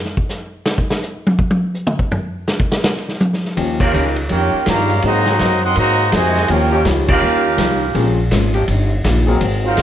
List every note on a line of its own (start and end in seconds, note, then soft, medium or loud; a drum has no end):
0.05 snare soft
0.17 kick medium
0.29 snare soft
0.29 hi-hat pedal medium
0.66 snare loud
0.78 kick medium
0.90 snare loud
1.02 hi-hat pedal medium
1.27 high tom loud
1.39 kick medium
1.51 high tom loud
1.74 hi-hat pedal medium
1.87 mid tom loud
1.99 kick medium
2.12 floor tom loud
2.47 snare loud
2.47 hi-hat pedal medium
2.60 kick medium
2.72 snare loud
2.84 snare loud
2.96 snare soft
3.08 snare medium
3.20 hi-hat pedal medium
3.20 high tom loud
3.33 snare soft
3.45 snare soft
3.57 3.93 D#2 medium
3.57 3.82 D#3 soft
3.57 3.78 F3 medium
3.57 3.82 G3 soft
3.57 3.78 A#3 medium
3.57 3.78 C#4 medium
3.57 3.82 C#4 medium
3.57 3.78 D#4 medium
3.57 3.83 F4 medium
3.57 3.78 G4 medium
3.57 ride medium
3.80 4.14 A#3 medium
3.80 4.14 C#4 medium
3.80 4.16 C#4 medium
3.80 4.14 F4 medium
3.80 4.16 G4 medium
3.80 4.16 A#4 medium
3.80 4.16 F5 medium
3.80 kick loud
3.80 crash medium
3.93 4.29 C#2 loud
3.93 4.18 D#3 medium
3.93 4.10 F3 medium
3.93 4.19 G3 medium
3.93 4.10 C#4 medium
3.93 4.19 C#4 medium
3.93 4.10 D#4 medium
3.93 4.20 F4 medium
3.93 4.09 G4 loud
3.93 hi-hat pedal medium
4.16 ride medium
4.29 4.52 F2 medium
4.29 4.55 D#3 medium
4.29 4.55 G3 medium
4.29 4.64 A#3 medium
4.29 4.64 C#4 medium
4.29 4.56 C#4 medium
4.29 4.65 F4 medium
4.29 4.56 F4 medium
4.29 4.64 G4 medium
4.29 4.65 A#4 medium
4.29 4.65 C#5 medium
4.29 4.65 G5 loud
4.29 ride medium
4.54 muted upright bass stroke soft
4.66 5.02 G2 medium
4.66 5.03 C#3 medium
4.66 4.92 D#3 medium
4.66 5.04 G3 medium
4.66 4.92 G3 medium
4.66 5.02 A#3 medium
4.66 4.92 C#4 medium
4.66 4.93 F4 medium
4.66 5.05 F5 medium
4.66 5.05 A#5 loud
4.66 snare medium
4.66 hi-hat pedal medium
4.66 ride medium
4.70 5.05 G4 medium
4.70 5.05 C#5 medium
4.89 ride medium
5.02 5.39 G#2 medium
5.02 5.59 D#3 medium
5.02 5.59 F#3 medium
5.02 5.24 F#3 medium
5.02 5.28 G#3 medium
5.02 5.59 A#3 medium
5.02 5.25 A#3 medium
5.02 5.24 C4 medium
5.02 5.28 C4 medium
5.02 5.24 D#4 medium
5.02 5.29 F#4 medium
5.02 5.60 F#4 medium
5.02 5.25 G#4 medium
5.02 5.29 A#4 medium
5.02 5.60 C5 medium
5.02 5.60 A#5 loud
5.02 ride medium
5.07 5.61 D#5 medium
5.25 5.35 F#3 loud
5.25 5.35 A#3 medium
5.25 5.35 C4 medium
5.25 5.35 G#4 loud
5.25 snare medium
5.39 5.75 F#2 loud
5.39 5.64 G#3 medium
5.39 5.65 C4 medium
5.39 5.65 F#4 medium
5.39 5.66 A#4 medium
5.39 snare medium
5.39 hi-hat pedal medium
5.39 ride medium
5.62 5.74 D#3 medium
5.62 5.74 F#3 loud
5.62 5.76 C4 medium
5.62 5.77 A#4 medium
5.62 5.77 D#5 medium
5.62 5.77 F#5 medium
5.62 5.77 C6 loud
5.75 6.12 G#2 medium
5.75 6.10 D#3 loud
5.75 6.10 F#3 loud
5.75 6.01 G#3 medium
5.75 6.10 A#3 medium
5.75 6.02 C4 medium
5.75 6.02 F#4 medium
5.75 6.12 F#4 medium
5.75 6.12 C5 medium
5.75 6.12 D#5 medium
5.75 6.12 A#5 loud
5.75 ride medium
5.80 6.03 A#4 medium
6.11 6.48 F2 loud
6.11 6.48 C3 loud
6.11 6.49 D#3 medium
6.11 6.49 G#3 medium
6.11 6.38 G#3 medium
6.11 6.38 C4 medium
6.11 6.38 F#4 medium
6.11 6.38 A#4 medium
6.11 snare medium
6.11 hi-hat pedal medium
6.11 ride medium
6.15 6.51 F#4 medium
6.15 6.50 C5 medium
6.15 6.51 D#5 medium
6.15 6.50 G#5 loud
6.25 snare soft
6.35 snare medium
6.35 ride medium
6.48 6.85 D#2 medium
6.48 6.74 D#3 soft
6.48 6.70 F3 medium
6.48 6.74 G3 medium
6.48 6.85 A#3 medium
6.48 6.70 A#3 medium
6.48 6.85 C#4 medium
6.48 6.70 C#4 medium
6.48 6.75 C#4 medium
6.48 6.71 D#4 medium
6.48 6.87 F4 medium
6.48 6.75 F4 medium
6.48 6.85 G4 medium
6.48 6.71 G4 medium
6.48 6.87 A#4 medium
6.48 6.87 C#5 medium
6.48 6.87 G5 medium
6.48 ride medium
6.72 7.20 F3 loud
6.72 7.19 C#4 loud
6.72 7.20 D#4 loud
6.72 7.20 G4 loud
6.85 7.21 C#2 loud
6.85 7.10 D#3 medium
6.85 7.10 G3 medium
6.85 7.11 C#4 medium
6.85 7.11 F4 medium
6.85 snare medium
6.85 hi-hat pedal medium
6.85 ride medium
7.08 8.14 A#3 medium
7.08 8.14 C#4 medium
7.08 8.15 C#4 medium
7.08 8.14 F4 medium
7.08 8.15 G4 medium
7.08 8.15 A#4 medium
7.08 8.15 F5 loud
7.08 kick loud
7.08 crash loud
7.21 7.57 D#2 medium
7.21 7.46 D#3 medium
7.21 7.47 G3 medium
7.21 7.47 C#4 medium
7.21 7.48 F4 medium
7.58 7.93 C2 loud
7.58 7.83 D#3 medium
7.58 7.83 G3 medium
7.58 7.84 C#4 medium
7.58 7.84 F4 medium
7.58 snare medium
7.58 hi-hat pedal medium
7.58 ride medium
7.95 8.30 A#1 medium
7.95 8.19 A#2 medium
7.95 8.16 F3 medium
7.95 8.20 G#3 medium
7.95 8.16 A#3 medium
7.95 8.16 C4 medium
7.95 8.16 C#4 medium
7.95 8.20 C#4 medium
7.95 8.21 F4 medium
7.95 8.16 G#4 medium
7.95 ride medium
8.31 8.67 G#1 loud
8.31 8.56 A#2 medium
8.31 8.56 G#3 medium
8.31 8.56 C#4 medium
8.31 8.57 F4 medium
8.31 snare medium
8.31 hi-hat pedal medium
8.31 ride medium
8.54 8.63 F3 loud
8.54 8.64 C#4 medium
8.54 8.63 D#4 medium
8.54 8.64 G4 loud
8.54 ride medium
8.68 9.03 G1 medium
8.68 8.93 D#3 medium
8.68 8.93 G3 medium
8.68 8.93 C#4 medium
8.68 8.94 F4 medium
8.68 ride medium
9.04 9.40 A#1 loud
9.04 9.29 D#3 medium
9.04 9.29 G3 medium
9.04 9.29 C#4 medium
9.04 9.30 F4 medium
9.04 snare medium
9.04 hi-hat pedal medium
9.04 ride medium
9.27 9.74 F#3 loud
9.27 9.40 F#3 medium
9.27 9.74 A#3 medium
9.27 9.40 A#3 medium
9.27 9.74 C4 medium
9.27 9.40 C4 medium
9.27 9.40 D#4 medium
9.27 9.74 G#4 loud
9.27 9.40 A#4 medium
9.41 9.76 G#1 medium
9.41 9.65 G#3 medium
9.41 9.66 C4 medium
9.41 9.67 F#4 medium
9.41 9.67 A#4 medium
9.41 ride medium
9.64 9.82 F#3 medium
9.64 9.82 C4 medium
9.64 9.82 D#4 medium
9.64 9.82 F4 medium
9.64 9.82 A#4 medium
9.64 9.82 C5 medium
9.64 9.82 F5 medium
9.77 9.82 C#2 loud
9.77 9.82 G#3 medium
9.77 9.82 C4 medium
9.77 snare medium
9.77 hi-hat pedal medium
9.77 ride medium